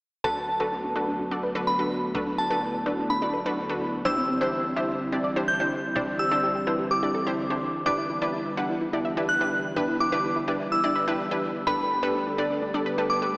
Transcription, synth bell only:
0, 0, Header, 1, 2, 480
1, 0, Start_track
1, 0, Tempo, 476190
1, 243, Time_signature, 4, 2, 24, 8
1, 13477, End_track
2, 0, Start_track
2, 0, Title_t, "Synth bell"
2, 0, Program_c, 0, 98
2, 244, Note_on_c, 0, 81, 92
2, 869, Note_off_c, 0, 81, 0
2, 1685, Note_on_c, 0, 83, 81
2, 2309, Note_off_c, 0, 83, 0
2, 2403, Note_on_c, 0, 81, 84
2, 3028, Note_off_c, 0, 81, 0
2, 3124, Note_on_c, 0, 83, 85
2, 3989, Note_off_c, 0, 83, 0
2, 4085, Note_on_c, 0, 88, 93
2, 4709, Note_off_c, 0, 88, 0
2, 5524, Note_on_c, 0, 91, 83
2, 6149, Note_off_c, 0, 91, 0
2, 6242, Note_on_c, 0, 88, 87
2, 6868, Note_off_c, 0, 88, 0
2, 6964, Note_on_c, 0, 86, 82
2, 7829, Note_off_c, 0, 86, 0
2, 7924, Note_on_c, 0, 86, 94
2, 8549, Note_off_c, 0, 86, 0
2, 9362, Note_on_c, 0, 90, 87
2, 9988, Note_off_c, 0, 90, 0
2, 10085, Note_on_c, 0, 86, 89
2, 10709, Note_off_c, 0, 86, 0
2, 10805, Note_on_c, 0, 88, 84
2, 11669, Note_off_c, 0, 88, 0
2, 11762, Note_on_c, 0, 83, 93
2, 12388, Note_off_c, 0, 83, 0
2, 13202, Note_on_c, 0, 86, 84
2, 13477, Note_off_c, 0, 86, 0
2, 13477, End_track
0, 0, End_of_file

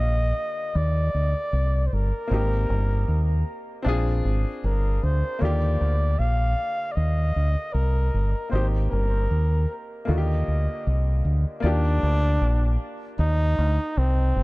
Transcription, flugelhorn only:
0, 0, Header, 1, 2, 480
1, 0, Start_track
1, 0, Key_signature, -3, "major"
1, 0, Tempo, 778210
1, 1417, Time_signature, 4, 2, 24, 8
1, 8901, End_track
2, 0, Start_track
2, 0, Title_t, "Flugelhorn"
2, 0, Program_c, 0, 56
2, 0, Note_on_c, 0, 75, 107
2, 470, Note_on_c, 0, 74, 97
2, 479, Note_off_c, 0, 75, 0
2, 1150, Note_on_c, 0, 72, 56
2, 1159, Note_off_c, 0, 74, 0
2, 1193, Note_on_c, 0, 70, 86
2, 1203, Note_off_c, 0, 72, 0
2, 2145, Note_off_c, 0, 70, 0
2, 2867, Note_on_c, 0, 70, 79
2, 3105, Note_on_c, 0, 72, 88
2, 3114, Note_off_c, 0, 70, 0
2, 3342, Note_on_c, 0, 74, 95
2, 3351, Note_off_c, 0, 72, 0
2, 3816, Note_on_c, 0, 77, 103
2, 3826, Note_off_c, 0, 74, 0
2, 4266, Note_on_c, 0, 74, 68
2, 4275, Note_off_c, 0, 77, 0
2, 4287, Note_on_c, 0, 75, 105
2, 4296, Note_off_c, 0, 74, 0
2, 4769, Note_on_c, 0, 70, 84
2, 4778, Note_off_c, 0, 75, 0
2, 5243, Note_off_c, 0, 70, 0
2, 5246, Note_on_c, 0, 72, 86
2, 5345, Note_off_c, 0, 72, 0
2, 5489, Note_on_c, 0, 70, 89
2, 6029, Note_off_c, 0, 70, 0
2, 6214, Note_on_c, 0, 75, 84
2, 6911, Note_off_c, 0, 75, 0
2, 7184, Note_on_c, 0, 62, 117
2, 7875, Note_off_c, 0, 62, 0
2, 8138, Note_on_c, 0, 63, 116
2, 8621, Note_on_c, 0, 60, 97
2, 8630, Note_off_c, 0, 63, 0
2, 8901, Note_off_c, 0, 60, 0
2, 8901, End_track
0, 0, End_of_file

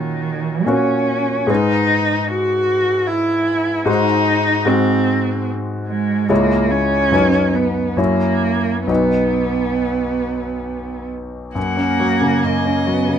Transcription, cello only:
0, 0, Header, 1, 2, 480
1, 0, Start_track
1, 0, Key_signature, 5, "major"
1, 0, Tempo, 855920
1, 384, Tempo, 800000
1, 870, Time_signature, 3, 2, 24, 8
1, 3264, Tempo, 824176
1, 4224, Tempo, 853485
1, 4704, Tempo, 903614
1, 5664, Tempo, 881057
1, 7513, End_track
2, 0, Start_track
2, 0, Title_t, "Cello"
2, 0, Program_c, 0, 42
2, 0, Note_on_c, 0, 51, 55
2, 393, Note_on_c, 0, 61, 58
2, 402, Note_off_c, 0, 51, 0
2, 873, Note_on_c, 0, 63, 69
2, 882, Note_off_c, 0, 61, 0
2, 1341, Note_on_c, 0, 66, 68
2, 1350, Note_off_c, 0, 63, 0
2, 1814, Note_on_c, 0, 64, 59
2, 1823, Note_off_c, 0, 66, 0
2, 2293, Note_off_c, 0, 64, 0
2, 2297, Note_on_c, 0, 63, 77
2, 2778, Note_on_c, 0, 60, 65
2, 2787, Note_off_c, 0, 63, 0
2, 3262, Note_off_c, 0, 60, 0
2, 3495, Note_on_c, 0, 56, 65
2, 3738, Note_on_c, 0, 58, 62
2, 3747, Note_off_c, 0, 56, 0
2, 3981, Note_on_c, 0, 61, 73
2, 3990, Note_off_c, 0, 58, 0
2, 4457, Note_on_c, 0, 59, 52
2, 4465, Note_off_c, 0, 61, 0
2, 4695, Note_on_c, 0, 58, 58
2, 4704, Note_off_c, 0, 59, 0
2, 5177, Note_off_c, 0, 58, 0
2, 5180, Note_on_c, 0, 59, 57
2, 6358, Note_off_c, 0, 59, 0
2, 6619, Note_on_c, 0, 58, 65
2, 7343, Note_on_c, 0, 59, 57
2, 7351, Note_off_c, 0, 58, 0
2, 7513, Note_off_c, 0, 59, 0
2, 7513, End_track
0, 0, End_of_file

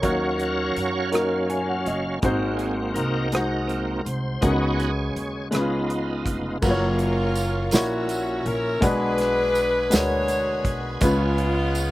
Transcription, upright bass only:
0, 0, Header, 1, 2, 480
1, 0, Start_track
1, 0, Key_signature, 6, "major"
1, 0, Tempo, 732154
1, 21, Time_signature, 6, 3, 24, 8
1, 7808, End_track
2, 0, Start_track
2, 0, Title_t, "Upright bass"
2, 0, Program_c, 0, 32
2, 20, Note_on_c, 0, 39, 80
2, 475, Note_off_c, 0, 39, 0
2, 501, Note_on_c, 0, 42, 62
2, 1195, Note_off_c, 0, 42, 0
2, 1221, Note_on_c, 0, 30, 65
2, 1442, Note_off_c, 0, 30, 0
2, 1459, Note_on_c, 0, 32, 83
2, 1915, Note_off_c, 0, 32, 0
2, 1940, Note_on_c, 0, 36, 67
2, 2635, Note_off_c, 0, 36, 0
2, 2660, Note_on_c, 0, 36, 68
2, 2882, Note_off_c, 0, 36, 0
2, 2901, Note_on_c, 0, 37, 89
2, 3356, Note_off_c, 0, 37, 0
2, 3382, Note_on_c, 0, 39, 60
2, 3616, Note_off_c, 0, 39, 0
2, 3616, Note_on_c, 0, 37, 70
2, 4073, Note_off_c, 0, 37, 0
2, 4101, Note_on_c, 0, 29, 65
2, 4323, Note_off_c, 0, 29, 0
2, 4340, Note_on_c, 0, 30, 91
2, 5036, Note_off_c, 0, 30, 0
2, 5064, Note_on_c, 0, 34, 86
2, 5518, Note_off_c, 0, 34, 0
2, 5544, Note_on_c, 0, 34, 78
2, 5765, Note_off_c, 0, 34, 0
2, 5782, Note_on_c, 0, 35, 84
2, 6477, Note_off_c, 0, 35, 0
2, 6507, Note_on_c, 0, 38, 83
2, 6959, Note_off_c, 0, 38, 0
2, 6978, Note_on_c, 0, 35, 70
2, 7201, Note_off_c, 0, 35, 0
2, 7221, Note_on_c, 0, 37, 99
2, 7808, Note_off_c, 0, 37, 0
2, 7808, End_track
0, 0, End_of_file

